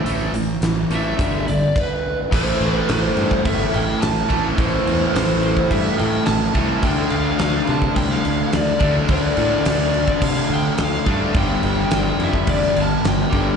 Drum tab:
CC |------------x---|x-x-x-x-x-x-x-x-|x-x-x-x-x-x-x-x-|x-x-x-x-x-x-x-x-|
HH |x-x-x-x-x-x-----|----------------|----------------|----------------|
SD |----o-----------|----o-------o---|----o-------o---|----o----o--o---|
BD |--------o---o---|o------oo-----o-|o------oo-----o-|o------oo-----o-|

CC |x-x-x-x-x-x-x-x-|x-x-x-x-x-x-x-x-|
HH |----------------|----------------|
SD |----o-------o---|----o----o--o---|
BD |o------oo-----o-|o------oo-----o-|